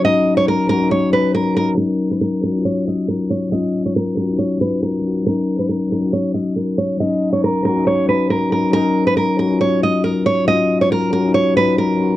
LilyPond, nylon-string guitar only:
\new Staff \with { instrumentName = "Nylon-string guitar" } { \time 4/4 \key ees \minor \tempo 4 = 138 ees''8. des''16 bes'8 bes'8 des''8 ces''8 bes'8 bes'8 | r8. ces''16 bes'8 bes'8 des''8 ees''8 bes'8 des''8 | ees''8. des''16 bes'8 bes'8 des''8 ces''8 bes'4 | bes'8. ces''16 bes'8 bes'8 des''8 ees''8 bes'8 des''8 |
ees''8. des''16 bes'8 bes'8 des''8 ces''8 bes'8 bes'8 | bes'8. ces''16 bes'8 bes'8 des''8 ees''8 bes'8 des''8 | ees''8. des''16 bes'8 bes'8 des''8 ces''8 bes'4 | }